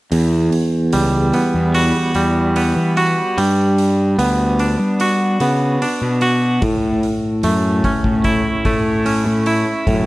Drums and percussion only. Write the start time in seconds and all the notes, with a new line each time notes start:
0.12 open hi-hat
0.52 open hi-hat
0.93 open hi-hat
1.33 open hi-hat
1.74 open hi-hat
2.15 open hi-hat
2.56 open hi-hat
2.97 open hi-hat
3.38 open hi-hat
3.78 open hi-hat
4.19 open hi-hat
4.59 open hi-hat
5.00 open hi-hat
5.40 open hi-hat
5.82 open hi-hat
6.21 open hi-hat
6.62 kick, open hi-hat
7.03 open hi-hat
7.43 open hi-hat
7.84 kick, open hi-hat
8.04 kick
8.24 kick, open hi-hat
8.65 kick, open hi-hat
9.06 open hi-hat
9.46 open hi-hat
9.87 kick, open hi-hat